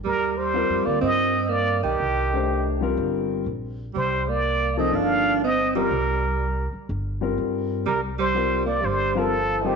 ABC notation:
X:1
M:4/4
L:1/8
Q:"Swing" 1/4=123
K:Cdor
V:1 name="Muted trumpet"
B c2 d e2 d G- | G3 z4 z | c d2 e f2 e B- | B3 z4 z |
B c2 d c A2 G |]
V:2 name="Grand piano"
z2 [G,CFB]3 z3 | z [A,DGc]2 [G,CFB]3 z2 | z3 [E,F,B,A]3 z [G,CFB] | z4 z [G,CFB]3 |
z2 [G,CFB] z2 [G,CFB] z [G,CFc] |]
V:3 name="Alto saxophone" clef=bass
G, G,2 B, C2 B, E,- | E,3 z4 z | G, B,2 C D2 C G,- | G,3 z4 z |
G, G,2 B, G, F,2 E, |]
V:4 name="Upright bass" clef=bass
E,,2- (3E,, F,, D,, G,,3 =B,,, | C,,4 G,,,2 B,,,2 | C,,4 G,,,4 | C,,3 z G,,,2 G,,2 |
C,,4 G,,,4 |]